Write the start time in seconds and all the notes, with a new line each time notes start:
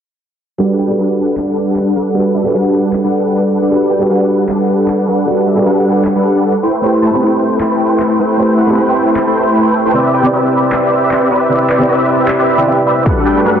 0.58 G3 D4 F#4 A4 B4 F#5
0.79 G3 D4 A4 B4 G5
0.87 G3 D4 F#4 A4
0.91 B4
0.98 G3 D4 A4 B4 F#5
1.37 G3 D4 A4 B4 F#5, clap
1.76 clap
1.96 G3 D4 A4 B4 F#5
2.14 G3 D4 F#4 A4 B4
2.35 G3 D4 A4 B4 E5
2.43 G3 D4 F#4 A4 B4
2.54 G3 D4 A4 B4 F#5
2.93 clap
3.04 G3 D4 A4 B4 F#5
3.62 G3 D4 A4 B4 F#5
3.70 G3 D4 F#4 A4 B4 F#5
3.90 G3 D4 A4 B4 G5
3.99 G3 D4 F#4 A4
4.03 B4
4.10 G3 D4 A4 B4 F#5
4.49 G3 D4 A4 B4 F#5, clap
4.88 clap
5.07 G3 D4 A4 B4 F#5
5.26 G3 D4 F#4 A4 B4
5.46 G3 D4 A4 B4 E5
5.55 G3 D4 F#4 A4 B4
5.66 G3 D4 A4 B4 F#5
6.05 clap
6.15 G3 D4 A4 B4 F#5
6.35 G3 D4 A4 B4 F#5
6.63 A3 E4 B4 C5 G5
6.82 A3 E4 G4 B4 C5 G5
7.02 A3 E4 B4 C5 A5
7.11 A3 E4 G4 B5
7.15 C4
7.21 A3 E4 B4 C5 G5
7.60 A3 E4 B4 C5 G5, clap
8.00 clap
8.19 A3 E4 B4 C5 G5
8.37 A3 E4 G4 B4 C5
8.58 A3 E4 B4 C5 F#5
8.67 A3 E4 G4 B5
8.71 C4
8.77 A3 E4 B4 C5 G5
9.16 clap
9.27 A3 E4 B4 C5 G5
9.86 A3 E4 B4 C5 G5
9.93 C3 C4 E4 G4 B4 D5 E5
10.14 C4 G4 B4 D5 G5
10.23 C3 C4 E4 B4 D5
10.33 C4 G4 B4 D5 E5
10.72 C4 G4 B4 D5 E5, clap
11.11 clap
11.31 C4 G4 B4 D5 E5
11.49 C3 C4 E4 B4 D5
11.70 C4 G4 B4 D5 E5, clap
11.78 C3 C4 E4 B4
11.82 D5
11.89 C4 G4 B4 D5 E5
12.28 clap
12.39 C4 G4 B4 D5 E5
12.57 C3 C4 E4 G4 B4 D5 E5
12.66 C3 C4 E4 B4 E5
12.87 C4 G4 B4 D5 E5
13.05 G2 G3 A3 D4 F#4 A4 B4 B5, kick
13.25 G3 D4 A4 B4 G5
13.34 G3 D4 F#4 A4
13.38 B4
13.45 G3 D4 A4 B4 F#5